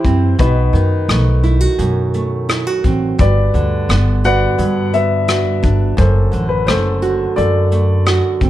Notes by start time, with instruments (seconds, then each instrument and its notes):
Already playing: nylon-string guitar E3 E4, upright piano E4 G4 B4 C5
0.04 upright bass F#2, nylon-string guitar C4, kick, closed hi-hat
0.39 upright bass B1, nylon-string guitar B2, upright piano D#4 F#4 B4, kick, closed hi-hat
0.73 upright bass F#2, nylon-string guitar D#3, closed hi-hat
1.08 upright bass B1, nylon-string guitar A3, cross-stick, closed hi-hat
1.44 nylon-string guitar E4, closed hi-hat
1.61 nylon-string guitar F#4
1.78 nylon-string guitar F#2, upright bass B2, closed hi-hat
2.14 nylon-string guitar A3, closed hi-hat
2.49 nylon-string guitar E4, cross-stick, closed hi-hat
2.67 nylon-string guitar F#4
2.84 upright bass A1, nylon-string guitar C4, kick, closed hi-hat
3.18 upright bass G1, nylon-string guitar G2, upright piano F#4 B4 D5, kick, closed hi-hat
3.54 upright bass D2, nylon-string guitar D3, closed hi-hat
3.89 upright bass G1, nylon-string guitar B3, cross-stick, closed hi-hat
4.24 nylon-string guitar F#4, upright piano B4 D5 F#5, closed hi-hat
4.58 nylon-string guitar G2, upright bass G2, closed hi-hat
4.94 nylon-string guitar B3, upright piano B4 E5, closed hi-hat
5.28 nylon-string guitar F#4, cross-stick, closed hi-hat
5.63 upright bass G1, nylon-string guitar D4, kick, closed hi-hat
5.97 upright bass F#1, nylon-string guitar F#2, upright piano A4 C5, kick, closed hi-hat
6.32 upright bass A1, nylon-string guitar D3, closed hi-hat
6.49 upright piano B4
6.67 upright bass F#1, nylon-string guitar A3, upright piano A4 C5, cross-stick, closed hi-hat
7.02 nylon-string guitar F#4, closed hi-hat
7.36 nylon-string guitar F#2, upright bass F#2, upright piano A4 D5, closed hi-hat
7.72 nylon-string guitar A3, closed hi-hat
8.06 nylon-string guitar F#4, cross-stick, closed hi-hat
8.41 upright bass G1, nylon-string guitar C4, kick, closed hi-hat